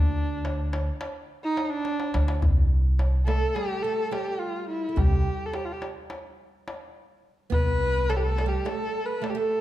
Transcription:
0.00 0.88 D2 loud
0.00 0.81 D4 medium
0.17 darbuka ka soft
0.45 darbuka tek medium
0.73 darbuka tek medium
1.01 darbuka tek medium
1.44 1.64 D#4 loud
1.57 darbuka tek medium
1.64 1.72 D#4 medium
1.70 2.30 D4 loud
1.85 darbuka tek medium
2.00 darbuka ka medium
2.14 2.39 D2 loud
2.14 darbuka tek medium
2.28 darbuka ka loud
2.42 3.43 C2 medium
2.42 darbuka dum loud
2.99 darbuka tek medium
3.26 3.55 A3 medium
3.26 3.57 A4 medium
3.26 darbuka tek medium
3.55 3.84 G3 medium
3.55 3.84 G4 loud
3.55 darbuka tek medium
3.83 4.11 A3 medium
3.83 4.14 A4 medium
4.11 4.88 G3 medium
4.11 4.41 G4 medium
4.11 darbuka tek medium
4.40 4.68 F4 medium
4.69 5.00 E4 medium
4.89 4.96 A3 soft
4.96 5.22 C2 medium
4.96 5.42 G3 medium
4.96 5.47 G4 medium
4.96 darbuka dum medium
5.46 5.57 A4 medium
5.54 5.67 G4 medium
5.54 darbuka tek medium
5.65 5.74 F4 medium
5.73 5.82 G4 medium
5.82 darbuka tek medium
6.10 darbuka tek medium
6.68 darbuka tek medium
7.50 8.53 C2 medium
7.50 8.09 B3 medium
7.50 8.11 B4 loud
7.50 darbuka dum medium
8.09 8.46 A3 medium
8.09 8.18 A4 medium
8.09 darbuka tek medium
8.17 8.26 G4 medium
8.24 8.50 A4 medium
8.38 darbuka tek medium
8.46 8.65 G3 medium
8.46 8.70 G4 medium
8.65 9.20 A3 medium
8.65 9.07 A4 medium
8.65 darbuka tek medium
9.06 9.24 B4 medium
9.22 9.34 A3 medium
9.22 9.32 A4 medium
9.22 darbuka tek medium
9.30 9.39 G4 medium
9.35 9.61 A3 medium
9.35 9.61 A4 medium

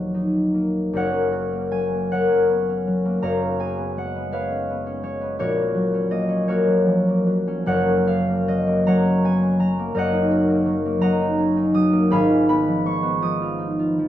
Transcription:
0.00 0.97 D#1 medium
0.00 0.98 D#2 medium
0.00 1.70 F#3 soft
0.00 0.53 A#3 soft
0.00 0.95 A#4 medium
0.00 0.98 D#5 medium
0.14 0.98 D#4 medium
0.54 1.52 A#3 soft
0.93 3.21 F#1 medium
0.93 3.22 F#2 medium
0.93 2.13 A#4 medium
0.93 2.12 C#5 medium
0.93 2.11 F#5 loud
1.12 2.30 C#4 medium
1.32 3.24 F#4 medium
1.53 1.92 A#3 medium
1.71 2.11 F#3 medium
1.71 2.37 G#5 loud
1.94 3.04 A#3 medium
2.12 2.86 F#3 medium
2.12 3.27 A#4 medium
2.12 3.23 C#5 medium
2.12 3.26 F#5 loud
2.32 2.68 C#4 medium
2.49 2.80 B3 medium
2.69 3.40 C#4 medium
2.87 3.26 F#3 medium
3.05 3.26 A#3 medium
3.22 5.43 F#1 medium
3.22 5.44 F#2 medium
3.22 4.32 C#5 medium
3.22 4.31 F5 medium
3.22 3.84 A#5 loud
3.41 4.50 C#4 medium
3.59 5.44 G#4 medium
3.59 5.44 G#5 medium
3.78 4.15 B3 soft
3.97 4.31 G#3 soft
3.97 4.58 F#5 medium
4.16 4.68 B3 medium
4.31 5.02 G#3 medium
4.31 5.44 B4 medium
4.31 5.02 C#5 medium
4.31 5.44 F5 medium
4.51 4.85 C#4 medium
4.70 4.99 B3 medium
4.86 5.93 C#4 medium
5.03 5.43 G#3 medium
5.03 5.38 C#5 medium
5.21 5.43 B3 medium
5.39 7.72 A#1 medium
5.39 7.72 A#2 medium
5.39 6.49 F#4 medium
5.39 6.48 A#4 medium
5.39 6.47 C#5 loud
5.58 6.10 A#3 soft
5.75 6.65 F#3 medium
5.94 6.28 C#4 medium
6.11 6.47 A#3 medium
6.11 6.76 D#5 medium
6.29 7.46 C#4 medium
6.48 7.07 A#3 medium
6.48 8.06 F#4 medium
6.48 7.67 A#4 medium
6.48 7.68 C#5 loud
6.66 7.25 F#3 medium
6.86 7.22 F3 medium
7.08 8.28 A#3 medium
7.27 8.47 F#3 medium
7.47 7.85 C#4 medium
7.66 9.93 F#1 medium
7.66 9.95 F#2 medium
7.66 9.94 A#4 medium
7.66 8.87 C#5 medium
7.66 8.86 F#5 loud
7.86 9.03 C#4 medium
8.07 10.30 F#4 medium
8.07 8.74 F5 loud
8.29 8.66 A#3 medium
8.48 8.85 F#3 medium
8.48 9.13 D#5 loud
8.67 9.78 A#3 medium
8.86 9.58 F#3 medium
8.86 10.01 C#5 medium
8.86 9.95 F#5 medium
8.86 9.58 A#5 loud
9.04 9.42 C#4 medium
9.24 9.55 B3 medium
9.24 9.87 G#5 loud
9.43 10.00 C#4 medium
9.59 10.65 F#3 medium
9.59 11.00 A#5 loud
9.79 10.48 A#3 medium
9.95 12.13 F#1 medium
9.95 12.14 F#2 medium
9.95 12.14 A#4 medium
9.95 11.01 D#5 medium
9.95 11.01 F#5 loud
10.13 11.20 D#4 medium
10.31 12.13 F#4 medium
10.49 10.84 A#3 medium
10.66 11.00 F#3 medium
10.85 11.91 A#3 medium
11.00 11.73 F#3 medium
11.00 12.14 D#5 medium
11.00 12.13 F#5 medium
11.00 12.13 A#5 loud
11.21 11.55 D#4 medium
11.38 11.69 C#4 medium
11.56 12.14 D#4 medium
11.74 12.14 F#3 medium
11.74 12.14 D#6 loud
11.93 12.14 A#3 medium
12.10 14.08 G#1 medium
12.10 14.08 G#2 medium
12.10 14.08 F5 medium
12.10 14.08 G#5 medium
12.10 12.48 B5 loud
12.30 13.40 F4 medium
12.48 13.02 B3 medium
12.48 14.08 B5 loud
12.68 13.21 F3 medium
12.86 14.08 G#3 medium
12.86 13.47 C#6 loud
13.03 14.08 B3 medium
13.22 13.97 F3 medium
13.22 14.08 D#6 loud
13.41 13.78 F4 medium
13.59 13.90 D#4 medium
13.79 14.08 F4 medium
13.99 14.08 F3 medium

